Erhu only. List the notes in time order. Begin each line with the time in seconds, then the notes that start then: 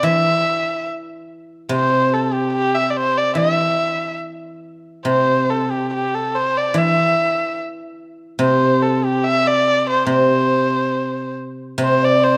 0.04 E5
1.72 C5
2.14 A4
2.33 G4
2.53 G4
2.75 E5
2.90 D5
2.96 C5
3.18 D5
3.37 E5
5.06 C5
5.50 A4
5.71 G4
5.94 G4
6.15 A4
6.35 C5
6.57 D5
6.78 E5
8.41 C5
8.82 A4
9.05 G4
9.24 E5
9.47 D5
9.90 C5
10.10 C5
11.83 C5
12.05 D5
12.24 C5